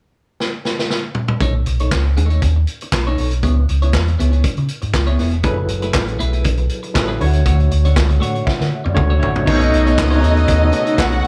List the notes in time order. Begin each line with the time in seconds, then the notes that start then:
0.40 snare
0.65 snare
0.79 snare
0.90 snare
1.15 mid tom
1.28 mid tom
1.41 B1 A3 D#4 A4 C#5, kick, closed hi-hat
1.55 muted clean electric guitar stroke
1.66 B1, muted clean electric guitar stroke, closed hi-hat
1.79 A3 D#4 A4 C#5, closed hi-hat
1.91 C#2, muted clean electric guitar stroke, kick, snare, clap
2.05 muted clean electric guitar stroke
2.17 D#2 A3 D#4 A4 C#5, closed hi-hat
2.29 A3 D#4 A4 C#5, closed hi-hat
2.42 D#2, muted clean electric guitar stroke, kick, closed hi-hat
2.56 muted clean electric guitar stroke
2.67 closed hi-hat
2.81 muted clean electric guitar stroke, closed hi-hat
2.92 B1, muted clean electric guitar stroke, kick, snare, clap
3.07 A3 D#4 A4 C#5
3.18 B1 A3 D#4 A4 C#5, open hi-hat
3.31 muted clean electric guitar stroke, closed hi-hat
3.43 C#2 B3 E4 G#4 C#5, kick, closed hi-hat
3.57 muted clean electric guitar stroke
3.69 C#2, muted clean electric guitar stroke, closed hi-hat
3.82 B3 E4 G#4 C#5, closed hi-hat
3.93 E2, kick, snare, clap
4.08 muted clean electric guitar stroke, closed hi-hat
4.19 C#2 B3 E4 G#4 C#5, closed hi-hat
4.32 B3 E4 G#4 C#5, closed hi-hat
4.44 muted clean electric guitar stroke, muted fingered electric bass stroke, kick, closed hi-hat
4.57 C#3, muted clean electric guitar stroke, closed hi-hat
4.68 closed hi-hat
4.82 G#2, muted clean electric guitar stroke, closed hi-hat
4.94 C#2, muted clean electric guitar stroke, kick, snare, clap
5.07 B3 E4 G#4 C#5, closed hi-hat
5.19 E1 B3 E4 G#4 C#5, snare, open hi-hat
5.31 muted clean electric guitar stroke, closed hi-hat
5.43 F#1 F#3 A3 E4 G#4 A4 B4, kick, closed hi-hat
5.58 muted clean electric guitar stroke
5.68 F#1, muted clean electric guitar stroke, closed hi-hat
5.82 A3 E4 G#4 B4, closed hi-hat
5.93 A1, muted clean electric guitar stroke, kick, snare, clap
6.08 muted clean electric guitar stroke, closed hi-hat
6.19 B1 A3 E4 G#4 B4, closed hi-hat
6.33 A3 E4 G#4 B4, closed hi-hat
6.44 B1, muted clean electric guitar stroke, kick, closed hi-hat
6.57 muted clean electric guitar stroke, closed hi-hat
6.69 closed hi-hat
6.83 muted clean electric guitar stroke, closed hi-hat
6.94 A1 F#3 E4 G#4 A4 B4, muted clean electric guitar stroke, kick, snare, clap
7.08 A3 E4 G#4 B4
7.20 D2 D3 A3 D4 E4 F#4 C#5, open hi-hat
7.27 F#4
7.33 muted clean electric guitar stroke, closed hi-hat
7.46 D2 A3 D4 F#4 C#5, kick, closed hi-hat
7.60 muted clean electric guitar stroke, closed hi-hat
7.71 D2, muted clean electric guitar stroke, closed hi-hat
7.85 A3 D4 F#4 C#5, closed hi-hat
7.96 C#2, muted clean electric guitar stroke, kick, snare, clap
8.09 muted clean electric guitar stroke, closed hi-hat
8.20 A2 A3 D4 F#4 C#5 F#5, closed hi-hat
8.34 A3 D4 F#4 C#5, closed hi-hat
8.46 E5, muted clean electric guitar stroke, muted fingered electric bass stroke, kick, snare
8.59 D3, muted clean electric guitar stroke, snare
8.85 F#2 D5, muted clean electric guitar stroke, high tom
8.94 D2 D3 A3 F#4 C#5, muted clean electric guitar stroke, kick, mid tom
9.10 A3 D4 F#4 C#5
9.18 A1 D3 A3 F#4 C#5
9.23 D4 F#4 C#5, floor tom
9.36 muted clean electric guitar stroke, floor tom
9.45 B1 B2 C#3 A3 B3 D#4 A4 C#5 D#5, kick, crash
9.49 C#5
9.61 muted clean electric guitar stroke, closed hi-hat
9.72 B1, muted clean electric guitar stroke, closed hi-hat
9.86 B3 D#4 A4 C#5, closed hi-hat
9.98 C#2, kick, snare, clap
10.09 B2 A3 B3 D#4 A4 C#5, closed hi-hat
10.20 D#2 B2 A3 B3 D#4 G#4 A4, closed hi-hat
10.25 C#5
10.36 muted clean electric guitar stroke, closed hi-hat
10.47 D#2, muted clean electric guitar stroke, kick, closed hi-hat
10.61 muted clean electric guitar stroke
10.72 B3 D#4 A4 C#5, closed hi-hat
10.85 B3 D#4 A4 C#5, closed hi-hat
10.98 B1 F#4 F#5, muted clean electric guitar stroke, kick, snare, clap
11.12 muted clean electric guitar stroke, closed hi-hat